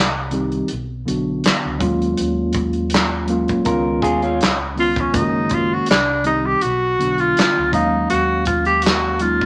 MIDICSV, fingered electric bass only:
0, 0, Header, 1, 2, 480
1, 0, Start_track
1, 0, Tempo, 740741
1, 1409, Time_signature, 4, 2, 24, 8
1, 6127, End_track
2, 0, Start_track
2, 0, Title_t, "Fingered electric bass"
2, 0, Program_c, 0, 33
2, 0, Note_on_c, 0, 36, 106
2, 385, Note_off_c, 0, 36, 0
2, 468, Note_on_c, 0, 35, 92
2, 662, Note_off_c, 0, 35, 0
2, 705, Note_on_c, 0, 35, 90
2, 900, Note_off_c, 0, 35, 0
2, 1072, Note_on_c, 0, 37, 91
2, 1160, Note_off_c, 0, 37, 0
2, 1178, Note_on_c, 0, 39, 100
2, 1377, Note_off_c, 0, 39, 0
2, 1420, Note_on_c, 0, 39, 103
2, 2237, Note_off_c, 0, 39, 0
2, 2378, Note_on_c, 0, 37, 98
2, 2615, Note_off_c, 0, 37, 0
2, 2615, Note_on_c, 0, 39, 88
2, 2865, Note_off_c, 0, 39, 0
2, 2865, Note_on_c, 0, 37, 109
2, 3339, Note_on_c, 0, 30, 110
2, 3348, Note_off_c, 0, 37, 0
2, 3740, Note_off_c, 0, 30, 0
2, 3828, Note_on_c, 0, 36, 94
2, 4225, Note_off_c, 0, 36, 0
2, 4305, Note_on_c, 0, 35, 96
2, 4500, Note_off_c, 0, 35, 0
2, 4545, Note_on_c, 0, 35, 84
2, 4741, Note_off_c, 0, 35, 0
2, 4910, Note_on_c, 0, 37, 80
2, 4999, Note_off_c, 0, 37, 0
2, 5016, Note_on_c, 0, 39, 92
2, 5216, Note_off_c, 0, 39, 0
2, 5263, Note_on_c, 0, 39, 107
2, 6078, Note_off_c, 0, 39, 0
2, 6127, End_track
0, 0, End_of_file